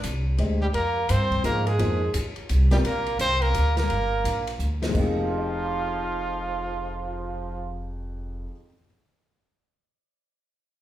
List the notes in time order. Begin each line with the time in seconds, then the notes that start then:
0.04 C2, hi-hat pedal, ride
0.38 D2 G#3 D4 G4 C5 D#5, ride
0.62 G3 G4
0.74 F2 A#3 A#4, ride
1.09 G2 C4 C5, hi-hat pedal, ride
1.31 kick, ride
1.44 G#2 F3 A#3 D#4 G#4 A#4 C5, hi-hat pedal, ride
1.67 G#3 G#4, ride
1.79 F2 F3 A#3 D#4 G#4 C5, ride
2.14 D#2, hi-hat pedal, ride
2.36 muted upright bass stroke, ride
2.49 C2, hi-hat pedal, ride
2.71 G3 C4 F4 G4 A#4 D5, snare, ride
2.84 A#1 A#3 A#4, ride
3.06 ride
3.19 C2 C4 C5, hi-hat pedal, ride
3.42 A#3 A#4, ride
3.54 D2, hi-hat pedal, ride
3.77 A#3 A#4, snare, ride
3.89 G1, ride
4.24 A#1, hi-hat pedal, ride
4.47 ride
4.59 D2, hi-hat pedal
4.82 F3 A#3 D#4 G#4 C5, snare, ride
4.90 F2 F3
4.94 F1 F3 D#4 F4, kick, crash
4.99 G4 G#4
5.17 cymbal swell
5.30 C5
5.38 D#5
5.46 G5
5.55 A#5
5.65 D6
5.76 F6
5.88 G#6
6.00 C7